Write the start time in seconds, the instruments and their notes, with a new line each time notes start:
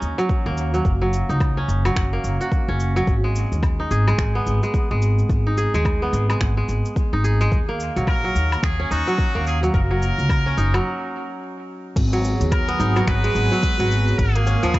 Already playing: kora F#3 A#3 C#4 D#4
0.02 upright bass D#2, shaker
0.18 kora F#3, shaker
0.29 kick, shaker
0.46 upright bass D#2, kora A#3
0.58 shaker
0.74 kora F#3, shaker
0.85 upright bass F#1, kick, shaker
1.02 kora F#3
1.13 shaker
1.29 upright bass C#2, kora D#4, shaker
1.40 kick, low woodblock, shaker
1.57 kora C#4
1.68 upright bass F#1, shaker
1.85 kora F#3, low woodblock, shaker
1.96 upright bass F#1, finger snap, kick, shaker
2.13 kora A#3
2.24 upright bass F#1, shaker
2.41 kora F#4, shaker
2.52 kick, shaker
2.68 upright bass F#1, kora C#4
2.80 shaker
2.96 kora F#3, shaker
3.07 upright bass G#1, kick, shaker
3.24 kora G#3
3.36 shaker
3.52 upright bass D#2, shaker
3.63 kick, low woodblock, shaker
3.80 kora D#4
3.91 upright bass G#1, kora G#4, shaker
4.07 kora G#3, low woodblock, shaker
4.18 upright bass G#1, finger snap, kick, shaker
4.35 kora B3
4.46 upright bass G#1, shaker
4.63 kora G#3, shaker
4.74 kick, shaker
4.91 upright bass G#1, kora G#3
5.02 shaker
5.19 shaker
5.29 upright bass G#1, kick, shaker
5.47 kora D#4
5.57 kora G#4, shaker
5.74 upright bass D#2, kora G#3, shaker
5.85 kick, low woodblock, shaker
6.02 kora B3
6.13 upright bass G#1, shaker
6.30 kora G#3, low woodblock, shaker
6.41 upright bass G#1, finger snap, kick, shaker
6.57 kora G#3
6.69 upright bass G#1, shaker
6.85 shaker
6.96 kick, shaker
7.13 upright bass G#1, kora D#4
7.24 kora G#4, shaker
7.41 kora G#3, shaker
7.52 upright bass D#2, kick, shaker
7.69 kora A#3
7.80 shaker
7.96 upright bass A#1, kora F#3, shaker
8.07 muted trumpet A#4, kick, low woodblock, shaker
8.24 kora F#3
8.35 upright bass D#2, shaker
8.52 low woodblock, shaker
8.63 upright bass D#2, muted trumpet G#4, finger snap, kick, shaker
8.80 kora C#4
8.91 upright bass D#2, kora D#4, muted trumpet F#4, shaker
9.07 kora F#3, shaker
9.18 kick, shaker
9.35 upright bass D#2, kora A#3
9.47 muted trumpet G#4, shaker
9.63 kora F#3, shaker
9.74 upright bass F#1, muted trumpet A#4, kick, shaker
9.91 kora F#3
10.02 shaker
10.18 upright bass C#2, shaker
10.29 kick, low woodblock, shaker
10.46 kora C#4
10.57 upright bass F#1, kora D#4, shaker
10.74 kora F#3, low woodblock, shaker
11.96 upright bass G#1, analog synth pad F#3 B3 G#4, kick, closed hi-hat, crash, shaker
12.13 kora F#3, closed hi-hat
12.25 shaker
12.40 upright bass D#2, closed hi-hat, shaker
12.52 muted trumpet A#4, kick, closed hi-hat, low woodblock, shaker
12.68 kora B3, closed hi-hat
12.80 upright bass G#1, kora D#4, shaker
12.96 kora F#3, low woodblock, shaker
13.07 upright bass G#1, muted trumpet B4, finger snap, kick, closed hi-hat, shaker
13.24 kora G#3, closed hi-hat
13.35 upright bass G#1, shaker
13.52 kora F#3, shaker
13.63 kick, closed hi-hat, shaker
13.79 upright bass G#1, kora F#3, closed hi-hat
13.91 shaker
14.08 shaker
14.18 upright bass G#1, analog synth pad A#3 F#5, muted trumpet G#4, kick, closed hi-hat, shaker
14.35 kora A#3, closed hi-hat
14.46 kora C#4, shaker
14.63 upright bass D#2, kora F3, closed hi-hat, shaker
14.74 kick, closed hi-hat, low woodblock, shaker